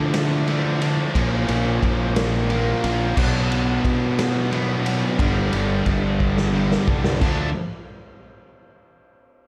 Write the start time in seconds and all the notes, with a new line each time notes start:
Already playing: D3 F3 A3 D4
0.14 snare, ride
0.47 D3 A3 D4, ride
0.81 D3 F3 A3 D4, ride
1.14 A#1 A#2 F3 A#3 C#4, kick, ride
1.49 A#1, ride
1.82 A#1, kick, ride
2.16 snare, ride
2.49 A#2 F3 A#3, ride
2.82 A#1 A#2 F3 A#3 C#4, ride
3.15 B1 B2 F#3 B3 D4, kick, crash
3.52 ride
3.85 B2, kick, ride
4.19 snare, ride
4.51 B2 F#3 B3, ride
4.84 B2 F#3 B3 D4, ride
5.18 G1 G2 D3 G3 B3 D4, kick, ride
5.53 G1, ride
5.86 G1, kick, ride
6.20 kick
6.38 snare
6.53 G2 D3 G3
6.71 snare
6.87 C2 G2 D3 G3 B3 D4, kick
7.04 snare
7.21 D2 D3 F3 A3 D4, kick, crash